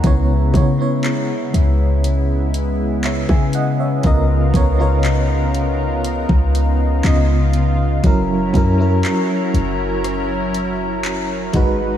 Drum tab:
HH |x-x-x-x-x-x-x-x-|x-x-x-x-x-x-x-x-|x-x-x-x-x-x-x-x-|
CP |----x-------x---|----x-------x---|----x-------x---|
SD |----------------|----------------|--------r-------|
BD |o-o----------o--|o-o------o------|o-o-----------o-|